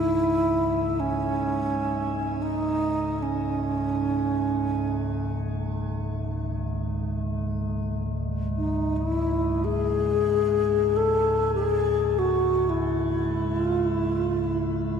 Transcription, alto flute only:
Already playing: E4
0.99 C#4
2.42 D#4
3.22 C#4
8.57 D#4
8.96 E4
9.64 G#4
10.96 A4
11.54 G#4
12.18 F#4
12.69 E4
13.62 F4
13.88 E4
14.15 F4
14.40 E4

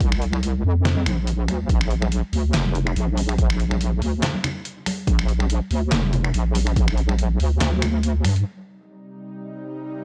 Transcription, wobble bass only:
Already playing: C2
0.64 F2
1.06 A#1
1.48 D2
1.69 A#1
2.33 D2
2.54 F1
2.96 A#1
4.02 D2
5.07 A#1
5.71 D2
5.92 F1
6.34 A#1
7.39 D2
7.61 D2
8.24 G2

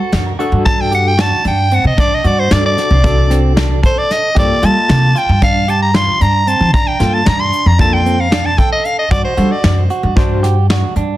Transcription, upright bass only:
0.12 F#2
0.52 G2
1.45 G2
1.84 C3
1.98 G2
2.24 G2
2.51 G2
2.90 C2
4.36 G2
4.63 G3
4.89 C3
5.29 G2
6.21 G2
6.60 F3
6.74 G2
7.00 G2
7.27 G2
7.66 F2
9.11 G2
9.37 G3
9.64 F#2
10.03 G2
10.96 G2

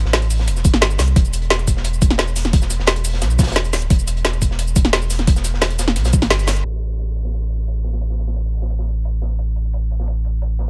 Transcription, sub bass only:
0.05 A1
0.48 E1
0.74 A1
0.82 G1
0.99 C2
1.16 E1
2.79 E1
3.22 B1
3.48 E1
3.73 D1
3.90 E1
5.53 E1
5.96 B1
6.22 G1
6.65 A1

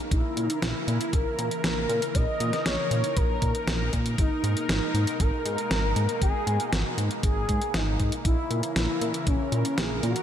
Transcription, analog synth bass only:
0.11 A#1
0.37 A#2
0.62 A#1
0.88 A#2
1.13 A#1
1.38 A#2
1.64 A#1
1.89 A#2
2.15 A#1
2.40 A#2
2.66 A#1
2.91 A#2
3.17 A#1
3.42 A#2
3.67 A#1
3.93 A#2
4.18 G#1
4.43 G#2
4.69 G#1
4.94 G#2
5.20 G#1
5.45 G#2
5.71 G#1
5.96 G#2
6.22 G#1
6.47 G#2
6.72 G#1
6.98 G#2
7.23 G#1
7.49 G#2
7.74 G#1
7.99 G#2
8.25 A#1
8.51 A#2
8.76 A#1
9.01 A#2
9.27 A#1
9.52 A#2
9.77 A#1
10.03 A#2

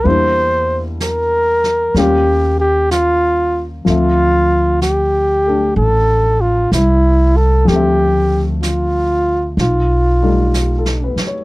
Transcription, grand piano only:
0.04 G3 A#3 D4
0.09 E4
1.96 G3 A#3 C#4 F4
3.85 F3 A3 C4
3.90 E5
5.46 A3 D4
7.65 F3 A3
7.72 C4 E5
10.23 G3 A3 D#4
10.56 G4
10.78 A4
11.04 B4
11.27 C#5

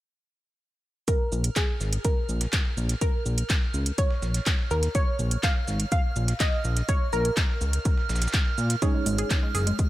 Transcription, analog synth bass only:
1.32 A#1
1.80 G#1
2.29 A#1
2.77 A#1
3.26 A#1
3.74 C#2
4.22 A#1
4.71 D#2
5.19 A#1
5.68 G#1
6.16 A#1
6.64 A#1
7.13 A#1
7.61 C#2
8.09 A#1
8.58 A#2
9.06 G#1
9.55 F#1

